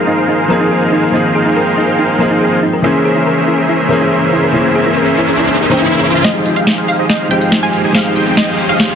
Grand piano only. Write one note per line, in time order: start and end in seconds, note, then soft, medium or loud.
0.00 0.46 F3 medium
0.00 0.47 A#3 medium
0.00 0.47 C4 medium
0.00 0.48 D#4 medium
0.00 0.48 G#4 loud
0.48 1.10 F3 loud
0.48 1.11 A#3 medium
0.48 1.11 C4 medium
0.48 1.12 D#4 medium
0.52 1.12 G#4 loud
1.12 2.17 F3 medium
1.12 2.17 A#3 medium
1.12 2.18 C4 medium
1.12 2.18 D#4 medium
1.16 2.19 G#4 loud
2.18 2.80 F3 loud
2.18 2.81 A#3 medium
2.18 2.81 C4 medium
2.18 2.82 D#4 medium
2.22 2.82 G#4 loud
2.82 3.87 E3 loud
2.82 3.87 A#3 medium
2.82 3.88 C#4 medium
2.82 3.89 G#4 loud
2.82 3.88 C5 medium
3.88 4.51 E3 loud
3.88 4.51 A#3 medium
3.88 4.52 C#4 medium
3.88 4.52 C5 medium
3.92 4.53 G#4 loud
4.52 5.57 E3 medium
4.52 5.58 A#3 medium
4.52 5.59 C#4 medium
4.52 5.58 C5 medium
4.56 5.59 G#4 loud
5.69 6.21 E3 loud
5.69 6.21 A#3 medium
5.69 6.22 C#4 medium
5.69 6.22 C5 medium
5.69 6.23 G5 loud
6.22 7.27 F3 medium
6.22 7.28 G#3 medium
6.22 7.28 C4 medium
6.22 7.29 D#4 medium
6.26 7.29 G4 loud
7.29 7.91 F3 loud
7.29 7.92 G#3 loud
7.29 7.92 C4 medium
7.29 7.93 D#4 medium
7.29 7.93 G4 loud
7.93 8.95 F3 loud
7.93 8.95 G#3 medium
7.93 8.95 C4 medium
7.93 8.95 D#4 medium
7.97 8.95 G4 loud